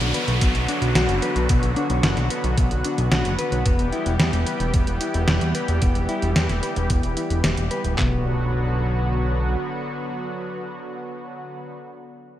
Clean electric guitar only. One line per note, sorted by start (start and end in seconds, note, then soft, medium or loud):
0.14 0.40 B4 medium
0.41 0.54 B3 medium
0.68 0.89 D4 medium
0.96 1.16 F#4 loud
1.23 1.43 B4 medium
1.50 1.70 B3 medium
1.76 1.97 D4 medium
2.04 2.16 F#4 medium
2.31 2.56 B4 medium
2.58 2.70 B3 medium
2.85 3.05 D4 medium
3.12 3.32 F#4 loud
3.39 3.59 B4 medium
3.66 3.86 B3 medium
3.93 4.13 E4 loud
4.20 4.32 G4 medium
4.47 4.72 B4 medium
4.74 4.86 B3 medium
5.01 5.22 E4 medium
5.28 5.49 G4 loud
5.55 5.76 B4 medium
5.82 6.02 B3 medium
6.09 6.30 E4 medium
6.36 6.48 G4 medium
6.63 6.89 B4 medium
6.90 7.02 B3 medium
7.17 7.38 E4 medium
7.44 7.65 G4 medium
7.71 7.92 B4 medium
7.98 8.23 B3 medium